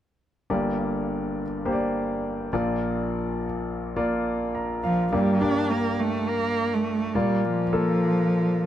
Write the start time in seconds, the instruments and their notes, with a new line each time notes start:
0.50 grand piano G1 G2 A#3 G4 D5
1.65 grand piano A#3 G4 C5
1.72 grand piano D5
2.53 grand piano A#1 A#2 A#3 F4 D5
3.96 grand piano A#3 F4 D5
4.55 grand piano A#5
4.84 cello F3, grand piano F5
5.12 grand piano G2 A#3 G4 D5, cello G3
5.41 grand piano A#3 G4 D5, cello D4
5.71 cello A#3
6.00 cello A3
6.29 cello A#3
6.74 cello A3
7.15 grand piano A#2 A#3 F4 D5, cello G3
7.45 cello F3
7.73 grand piano A#3 F4 A4